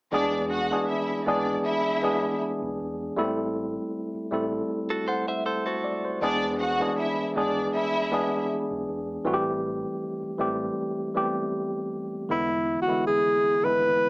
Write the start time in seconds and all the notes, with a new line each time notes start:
0.12 E1 E3 G#3 B3 D4 G#4 D5
0.50 F#4 F#5
0.70 E3 G#3 B3 D4 G#4
0.88 E4 E5
1.10 muted fingered electric bass stroke
1.26 G#1 E3 G#3 B3 D4 G#4 D5
1.64 E4 E5
2.02 E3 G#3 B3 D4 G#4
2.62 B1
2.79 E1
3.17 A1 G3 A3 B3 E4 A4
3.24 C4
4.15 muted fingered electric bass stroke
4.31 A1 G3 A3 C4 E4 A4
4.90 F#4 A4
5.08 A4 C5 F#5
5.28 C5 E5
5.46 A4 C5
5.66 F#4 A4 C5
5.84 D5
6.05 C5
6.21 E1 E3 G#3 B3 D4 G#4 D5
6.60 F#4 F#5
6.80 E3 G#3 B3 D4 G#4
6.98 E4 E5
7.19 muted fingered electric bass stroke
7.35 G#1 E3 G#3 B3 D4 G#4 D5
7.73 E4 E5
8.11 E3 G#3 B3 D4 G#4
8.71 B1
8.88 E1
9.25 A1 E3 G3 A3 C4 F#4
9.34 G4
10.23 muted fingered electric bass stroke
10.38 A1 E3 G3 A3 C4 G4
11.15 E3 G3 A3 B3 G4
11.23 C4
12.29 E1 D3 E3 G#3 B3 E4
12.82 F#4
12.87 D3 E3 G#3 B3 E4, muted fingered electric bass stroke
13.07 G#4
13.44 muted fingered electric bass stroke
13.63 G#1 D3 E3 G#3 B3 E4 B4